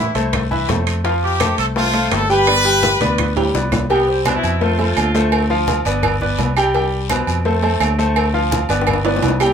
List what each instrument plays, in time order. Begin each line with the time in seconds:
Already playing: horn section E4
0.15 fingered electric bass C2, grand piano A3 A4 C5, high bongo, high conga, high timbale, short guiro
0.33 high bongo, high conga, low conga, high timbale, long guiro, claves
0.51 grand piano E3 E4 E5, high bongo, high conga, low conga
0.68 fingered electric bass F2, grand piano A3 A4 C5, high bongo, low bongo, high conga, high timbale, low timbale, short guiro
0.87 high timbale, short guiro, claves
1.04 grand piano F3 F4 F5, high bongo, high conga, high timbale, long guiro
1.23 horn section G4, high conga
1.40 grand piano A3 A4 C5, high bongo, high conga, high timbale, low timbale, short guiro, claves
1.58 fingered electric bass C2, horn section A4, high conga, high timbale, short guiro
1.76 grand piano A3 A4 C5, horn section F4, high bongo, high conga, long guiro
1.94 grand piano A3 A4 C5, high conga, high timbale
2.11 fingered electric bass G1, horn section A4, high bongo, low bongo, high conga, high timbale, low timbale, short guiro, claves
2.30 grand piano G3 G4 G5, horn section B4, short guiro
2.47 grand piano B3 B4 D5, high bongo, high conga, high timbale, long guiro, claves
2.65 grand piano G3 G4 G5, high conga, high timbale
2.83 high bongo, high conga, low timbale, short guiro
3.00 fingered electric bass D2, grand piano B3 B4 D5, high bongo, high conga, high timbale, short guiro
3.18 low bongo, low conga, high timbale, long guiro, claves
3.36 grand piano G3 G4 G5, low conga, high timbale
3.54 fingered electric bass C2, grand piano B3 B4 D5, low bongo, short guiro
3.72 low bongo, low conga, low timbale, short guiro, claves
3.90 grand piano G3 G4 G5, saxophone section B3, cowbell, high conga, low agogo, long guiro
4.08 saxophone section C4, high conga
4.25 grand piano B2 B4 C5, saxophone section D4, cowbell, high conga, low timbale, low agogo, short guiro, claves
4.35 saxophone section E4
4.43 fingered electric bass F2, high conga, low agogo, short guiro
4.61 grand piano A3 A4 C5, saxophone section F4, cowbell, high conga, long guiro
4.79 grand piano A3 A4 C5, saxophone section F4, high conga, low agogo
4.97 fingered electric bass D2, cowbell, high conga, low timbale, low agogo, short guiro, claves
5.15 grand piano A3 A4 C5, cowbell, short guiro
5.32 cowbell, high conga, low agogo, long guiro, claves
5.50 grand piano F3 F4 F5, high conga
5.68 cowbell, high conga, low timbale, low agogo, short guiro
5.85 fingered electric bass G1, grand piano B3 B4 D5, cowbell, high conga, low agogo, short guiro
6.03 cowbell, high conga, low conga, low agogo, long guiro, claves
6.21 grand piano B3 B4 D5, high conga, low conga
6.38 fingered electric bass C2, cowbell, high conga, low timbale, low agogo, short guiro
6.57 grand piano G3 G4 G5, low agogo, short guiro, claves
6.74 grand piano G3 G4 G5, cowbell, high conga, low agogo, long guiro
6.92 high conga
7.10 grand piano B2 B4 C5, cowbell, high conga, low timbale, low agogo, short guiro, claves
7.27 fingered electric bass F2, high conga, low agogo, short guiro
7.45 grand piano A3 A4 C5, cowbell, high conga, long guiro
7.62 grand piano A3 A4 C5, high conga, low agogo
7.80 fingered electric bass D2, cowbell, high conga, low timbale, low agogo, short guiro, claves
7.99 grand piano A3 A4 C5, cowbell, short guiro
8.16 cowbell, high conga, low agogo, long guiro, claves
8.34 grand piano F3 F4 F5, high conga
8.51 cowbell, high conga, low timbale, low agogo, short guiro
8.69 fingered electric bass G1, grand piano B3 B4 D5, cowbell, high bongo, high conga, low agogo, short guiro
8.81 high bongo
8.87 cowbell, high conga, low conga, low agogo, long guiro, claves
8.93 high bongo
9.05 grand piano B3 B4 D5, low bongo, high conga, high timbale
9.17 low bongo
9.22 fingered electric bass C2, cowbell, high conga, high timbale, low agogo, short guiro
9.28 low bongo
9.40 grand piano G3 G4 G5, low timbale, low agogo, short guiro, claves